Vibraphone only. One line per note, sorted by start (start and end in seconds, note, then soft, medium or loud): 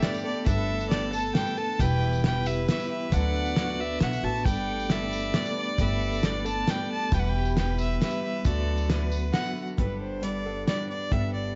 0.00 0.34 A3 medium
0.00 0.23 B3 medium
0.00 0.12 A4 medium
0.13 0.46 A4 medium
0.25 0.57 B3 medium
0.36 0.68 A3 medium
0.47 0.79 A4 medium
0.58 0.89 B3 medium
0.70 1.01 A3 medium
0.80 1.12 A4 medium
0.91 1.22 B3 medium
1.02 1.34 A3 medium
1.13 1.45 A4 medium
1.24 1.56 B3 medium
1.35 1.67 A3 medium
1.46 1.79 A4 medium
1.57 1.79 B3 medium
1.68 1.79 A3 medium
1.79 2.10 B4 loud
1.90 2.21 E4 medium
2.01 2.32 B3 medium
2.11 2.43 B4 medium
2.22 2.55 E4 medium
2.33 2.66 B3 medium
2.44 2.77 B4 medium
2.56 2.88 E4 medium
2.67 3.00 B3 medium
2.78 3.11 B4 medium
2.90 3.12 E4 medium
3.01 3.12 B3 medium
3.12 3.44 B4 loud
3.23 3.55 D4 medium
3.34 3.66 B3 medium
3.45 3.77 B4 medium
3.56 3.89 D4 medium
3.67 4.00 B3 medium
3.78 4.10 B4 medium
3.90 4.22 D4 medium
4.01 4.33 B3 medium
4.23 4.45 D4 medium
4.34 4.45 B3 medium
4.46 4.78 A4 medium
4.57 4.89 B3 medium
4.68 5.00 A3 medium
4.79 5.11 A4 medium
4.90 5.23 B3 medium
5.02 5.33 A3 medium
5.13 5.45 A4 medium
5.24 5.56 B3 medium
5.35 5.67 A3 medium
5.46 5.78 A4 medium
5.57 5.88 B3 medium
5.68 5.99 A3 medium
5.79 6.10 A4 medium
5.89 6.21 B3 medium
6.00 6.33 A3 medium
6.12 6.44 A4 medium
6.23 6.55 B3 medium
6.34 6.66 A3 medium
6.45 6.78 A4 medium
6.56 6.89 B3 medium
6.68 7.00 A3 medium
6.79 7.12 A4 medium
6.90 7.12 B3 medium
7.01 7.12 A3 medium
7.23 7.55 B3 medium
7.35 7.66 G3 medium
7.45 7.77 G4 medium
7.56 7.89 B3 medium
7.68 7.99 G3 medium
7.78 8.10 G4 medium
7.90 8.22 B3 medium
8.00 8.33 G3 medium
8.11 8.45 G4 medium
8.23 8.45 B3 medium
8.35 8.45 G3 medium
8.46 8.78 F#4 medium
8.57 8.88 B3 medium
8.68 8.99 F#3 medium
8.90 9.21 B3 medium
9.01 9.32 F#3 medium
9.12 9.43 F#4 medium
9.23 9.54 B3 medium
9.33 9.65 F#3 medium
9.44 9.78 F#4 medium
9.55 9.78 B3 medium
9.66 9.78 F#3 medium